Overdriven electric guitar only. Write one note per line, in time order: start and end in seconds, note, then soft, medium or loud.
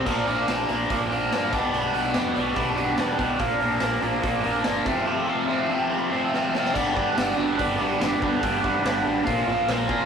0.05 0.25 A#2 medium
0.05 0.26 F3 medium
0.05 0.26 A#3 medium
0.05 0.27 D4 loud
0.26 0.46 A#2 medium
0.26 0.47 F3 medium
0.26 0.47 A#3 medium
0.26 0.49 D4 medium
0.47 0.67 A#2 medium
0.47 0.68 F3 medium
0.47 0.69 A#3 medium
0.47 0.70 D4 medium
0.68 0.88 A#2 medium
0.68 0.89 F3 medium
0.68 0.89 A#3 loud
0.68 0.90 D4 loud
0.89 1.09 A#2 medium
0.89 1.10 F3 loud
0.89 1.10 A#3 medium
0.89 1.11 D4 loud
1.10 1.29 A#2 medium
1.10 1.31 F3 medium
1.10 1.31 A#3 medium
1.10 1.32 D4 medium
1.30 1.51 A#2 medium
1.30 1.51 F3 medium
1.30 1.52 A#3 medium
1.30 1.53 D4 medium
1.52 1.72 B2 medium
1.52 1.73 G3 loud
1.52 1.73 B3 loud
1.52 1.74 D4 loud
1.73 1.91 B2 medium
1.73 1.92 G3 medium
1.73 1.93 B3 loud
1.73 1.94 D4 loud
1.92 2.11 B2 medium
1.92 2.12 G3 medium
1.92 2.13 B3 medium
1.92 2.14 D4 medium
2.12 2.33 B2 medium
2.12 2.34 G3 medium
2.12 2.35 B3 medium
2.12 2.36 D4 loud
2.34 2.53 B2 medium
2.34 2.55 G3 medium
2.34 2.55 B3 medium
2.34 2.56 D4 loud
2.55 2.74 B2 medium
2.55 2.75 G3 loud
2.55 2.75 B3 loud
2.55 2.76 D4 loud
2.75 2.95 B2 medium
2.75 2.96 G3 medium
2.75 2.96 B3 medium
2.75 2.97 D4 loud
2.96 3.15 B2 medium
2.96 3.16 G3 medium
2.96 3.17 B3 medium
2.96 3.17 D4 medium
3.16 3.38 B2 medium
3.16 3.38 G3 medium
3.16 3.39 B3 medium
3.16 3.39 D4 medium
3.38 3.59 A#2 medium
3.38 3.60 F3 loud
3.38 3.60 A#3 loud
3.38 3.61 D4 loud
3.60 3.79 A#2 medium
3.60 3.80 F3 medium
3.60 3.81 A#3 medium
3.60 3.81 D4 medium
3.80 4.00 A#2 medium
3.80 4.02 F3 medium
3.80 4.01 A#3 medium
3.80 4.02 D4 medium
4.01 4.20 A#2 medium
4.01 4.21 F3 medium
4.01 4.22 A#3 medium
4.01 4.22 D4 loud
4.21 4.41 A#2 loud
4.21 4.42 F3 loud
4.21 4.43 A#3 loud
4.21 4.43 D4 loud
4.42 4.62 A#2 medium
4.42 4.63 F3 medium
4.42 4.63 A#3 medium
4.42 4.64 D4 loud
4.63 4.84 A#2 medium
4.63 4.84 F3 medium
4.63 4.85 A#3 medium
4.63 4.85 D4 medium
4.84 5.03 F2 loud
4.84 5.04 C3 loud
4.84 5.05 F3 loud
4.84 5.06 A3 loud
4.84 5.06 C4 loud
5.05 5.25 F2 medium
5.05 5.25 C3 loud
5.05 5.26 F3 medium
5.05 5.27 A3 medium
5.05 5.28 C4 loud
5.26 5.47 F2 medium
5.26 5.47 C3 medium
5.26 5.48 F3 medium
5.26 5.48 A3 medium
5.26 5.48 C4 medium
5.48 5.67 F2 medium
5.48 5.68 C3 medium
5.48 5.68 F3 medium
5.48 5.69 A3 medium
5.48 5.70 C4 medium
5.69 5.90 F2 medium
5.69 5.90 C3 medium
5.69 5.91 F3 medium
5.69 5.92 A3 medium
5.69 5.92 C4 loud
5.91 6.10 F2 loud
5.91 6.10 C3 loud
5.91 6.10 F3 loud
5.91 6.11 A3 loud
5.91 6.12 C4 loud
6.11 6.31 F2 medium
6.11 6.32 C3 medium
6.11 6.32 F3 medium
6.11 6.33 A3 medium
6.11 6.33 C4 medium
6.32 6.52 F2 medium
6.32 6.52 C3 medium
6.32 6.53 F3 loud
6.32 6.54 A3 medium
6.32 6.54 C4 loud
6.53 6.72 F2 medium
6.53 6.73 C3 medium
6.53 6.74 F3 medium
6.53 6.74 A3 medium
6.53 6.74 C4 medium
6.73 6.92 G2 loud
6.73 6.93 D3 loud
6.73 6.94 G3 loud
6.73 6.94 B3 loud
6.73 6.95 D4 loud
6.94 7.13 G2 medium
6.94 7.14 D3 medium
6.94 7.15 G3 medium
6.94 7.15 B3 medium
6.94 7.16 D4 loud
7.14 7.35 G2 loud
7.14 7.36 D3 loud
7.14 7.37 G3 loud
7.14 7.37 B3 loud
7.14 7.38 D4 loud
7.37 7.56 G2 medium
7.37 7.57 D3 loud
7.37 7.57 G3 medium
7.37 7.57 B3 medium
7.37 7.58 D4 loud
7.57 7.77 G2 medium
7.57 7.77 D3 loud
7.57 7.78 G3 loud
7.57 7.79 B3 loud
7.57 7.80 D4 loud
7.78 7.98 G2 medium
7.78 7.99 D3 medium
7.78 7.99 G3 medium
7.78 8.00 B3 medium
7.78 8.01 D4 loud
7.99 8.20 G2 loud
7.99 8.21 D3 loud
7.99 8.22 G3 loud
7.99 8.22 B3 loud
7.99 8.23 D4 loud
8.21 8.40 G2 medium
8.21 8.40 D3 medium
8.21 8.41 G3 medium
8.21 8.42 B3 medium
8.21 8.43 D4 medium
8.41 8.61 G2 medium
8.41 8.62 D3 loud
8.41 8.62 G3 medium
8.41 8.63 B3 loud
8.41 8.63 D4 loud
8.62 8.80 G2 medium
8.62 8.81 D3 medium
8.62 8.82 G3 medium
8.62 8.83 B3 medium
8.62 8.83 D4 medium
8.81 9.01 G2 loud
8.81 9.02 D3 loud
8.81 9.03 G3 loud
8.81 9.03 B3 loud
8.81 9.04 D4 loud
9.02 9.23 G2 medium
9.02 9.24 D3 loud
9.02 9.24 G3 loud
9.02 9.24 B3 loud
9.02 9.25 D4 loud
9.24 9.46 A#2 loud
9.24 9.47 F3 loud
9.24 9.47 A#3 loud
9.24 9.48 F4 loud
9.47 9.67 A#2 medium
9.47 9.67 F3 medium
9.47 9.67 A#3 medium
9.47 9.68 F4 loud
9.69 9.87 A#2 loud
9.69 9.88 F3 loud
9.69 9.88 A#3 loud
9.69 9.89 F4 loud
9.88 10.05 A#2 medium
9.88 10.05 F3 medium
9.88 10.05 A#3 medium
9.88 10.05 F4 loud